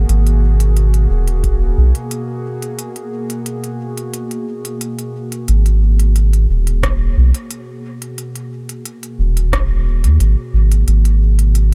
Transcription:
Already playing: ambient pad B2 A#3 F#4 G#4
0.09 sub bass G#1, closed hi-hat
0.27 closed hi-hat
0.60 closed hi-hat
0.77 closed hi-hat
0.94 closed hi-hat
1.10 sub bass D#1
1.28 closed hi-hat
1.44 kick, closed hi-hat
1.77 sub bass B1
1.95 closed hi-hat
2.11 closed hi-hat
2.62 closed hi-hat
2.79 closed hi-hat
2.96 closed hi-hat
3.30 closed hi-hat
3.46 closed hi-hat
3.64 closed hi-hat
3.98 closed hi-hat
4.14 closed hi-hat
4.31 closed hi-hat
4.65 closed hi-hat
4.81 closed hi-hat
4.99 closed hi-hat
5.32 closed hi-hat
5.48 sub bass G#1, closed hi-hat
5.66 closed hi-hat
6.00 closed hi-hat
6.16 closed hi-hat
6.33 closed hi-hat
6.49 sub bass D#1
6.67 closed hi-hat
6.83 kick, cross-stick, closed hi-hat
7.17 sub bass B1
7.34 closed hi-hat
7.51 closed hi-hat
8.02 closed hi-hat
8.18 closed hi-hat
8.36 closed hi-hat
8.69 closed hi-hat
8.85 closed hi-hat
9.03 closed hi-hat
9.19 sub bass D#1
9.37 closed hi-hat
9.52 kick, cross-stick, closed hi-hat
10.04 sub bass D#2, closed hi-hat
10.20 sub bass G#1, closed hi-hat
10.54 sub bass G#1
10.72 closed hi-hat
10.87 sub bass G#1, closed hi-hat
11.05 closed hi-hat
11.39 closed hi-hat
11.55 closed hi-hat

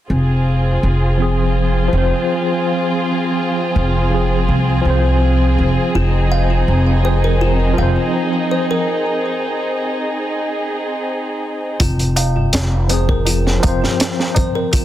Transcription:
0.09 upright bass F1, violin section C4 F4 G#4
0.83 upright bass F1
1.17 tine electric piano F3 C4
1.22 tine electric piano G#4
1.89 tine electric piano F3
1.93 upright bass F1, tine electric piano C4
1.98 tine electric piano C5
3.76 upright bass F1
4.10 tine electric piano F3 C4
4.14 tine electric piano G#4
4.48 upright bass C2
4.81 upright bass C2, tine electric piano F3
4.86 tine electric piano C4
4.90 tine electric piano C5
5.58 upright bass F1
5.94 upright bass F1, violin section D#4, music box F4
6.32 music box F5
6.68 upright bass F1
7.02 tine electric piano F3 C4, music box C5
7.07 tine electric piano G#4
7.24 music box A#4
7.41 music box F4
7.74 tine electric piano F3
7.78 upright bass F1, tine electric piano C4, music box F5
7.83 tine electric piano C5
8.51 music box C5
8.71 music box A#4
11.80 upright bass F1, music box F4, kick, closed hi-hat, tabla na
11.99 closed hi-hat, tabla na
12.16 music box F5, closed hi-hat, tabla na
12.36 tabla na, tabla ge
12.53 upright bass F1, snare, closed hi-hat, tabla na
12.88 tine electric piano F3 C4, music box C5, closed hi-hat, tabla na
12.93 tine electric piano G#4
13.09 music box A#4, kick, tabla na
13.25 music box F4, closed hi-hat, tabla na
13.46 snare, tabla na
13.59 tine electric piano F3, music box F5, closed hi-hat, tabla na
13.64 upright bass F1, tine electric piano C4, kick
13.68 tine electric piano C5
13.82 snare, tabla na, tabla ge
13.99 snare, closed hi-hat, tabla na
14.20 snare, tabla na
14.35 music box C5, kick, closed hi-hat, tabla na, tabla ge
14.55 music box A#4, tabla na
14.72 music box F4, kick, closed hi-hat, tabla na

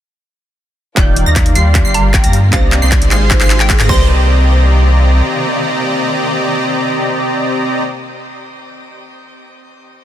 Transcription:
0.95 sub bass D#1, supersaw synth D#3 D#4 D5 F5 G5, string section D#3 G3 F4 D5, synth pluck A#3 D#4 F4 G4 D5 G6, kick, clap, closed hi-hat, riser
1.16 closed hi-hat
1.26 sub bass D#2, supersaw synth D#3 D#4 D5 F5 A#5, synth pluck A#6
1.36 kick, clap, closed hi-hat
1.46 closed hi-hat
1.55 sub bass D#2, supersaw synth G3 G4 D5 F5 C6, synth pluck C7, closed hi-hat
1.73 string section D3 A#3, synth pluck A#3 D4 F4 G4 D5, kick, clap, closed hi-hat
1.85 sub bass G1, supersaw synth G3 G4 D5 F5 C6, synth pluck C7
1.94 synth pluck A#5, closed hi-hat
2.14 synth pluck G5, kick, clap, closed hi-hat
2.24 sub bass G2, supersaw synth G3 G4 D5 F5 A#5, synth pluck A#6, closed hi-hat
2.33 closed hi-hat
2.51 sub bass C2, string section C3 D#3 D5, synth pluck A#3 D4 D#4 G4 F5 A#6, supersaw synth C4 G4 D5 D#5 A#5, kick, clap, closed hi-hat
2.55 synth pluck C5
2.72 clap, closed hi-hat
2.82 sub bass C2, supersaw synth C4 G4 D5 D#5 C6, synth pluck C7
2.92 kick, clap, closed hi-hat
3.02 closed hi-hat
3.11 sub bass G#1, supersaw synth G#3 G#4 C5 F5 C6, synth pluck C7, clap, closed hi-hat
3.29 string section G#3 F4, synth pluck A#3 D#4 F4 G#4 C5, kick, clap, closed hi-hat
3.41 sub bass G#1, supersaw synth G#3 G#4 C5 F5 C6, synth pluck C7, clap
3.50 clap, closed hi-hat
3.60 synth pluck G5, clap
3.70 kick, clap, closed hi-hat
3.80 sub bass G#2, supersaw synth G#3 G#4 C5 F5 A#5, synth pluck A#6, clap, closed hi-hat
3.86 sub bass C2, string section C3 D#3 A#3, synth pluck A#3 D#4 C6 A#6, supersaw synth C4 G4 D5 D#5 A#5, kick
3.91 synth pluck G4 C5

